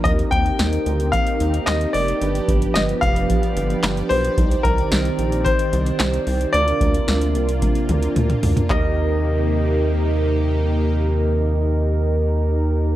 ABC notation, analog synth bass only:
X:1
M:4/4
L:1/16
Q:1/4=111
K:Eb
V:1 name="Analog synth bass" clef=bass
E,,2 E,,2 E,,2 D,,3 z E,,2 E,,2 F,,,2 | G,,,2 G,,,2 G,,,2 F,,,3 z G,,,2 G,,,2 =B,,,2 | C,,2 C,,2 C,,2 B,,,3 z C,,2 C,,2 C,,2 | D,,2 D,,2 D,,2 C,,3 z D,,2 D,,2 D,,2 |
E,,16- | E,,16 |]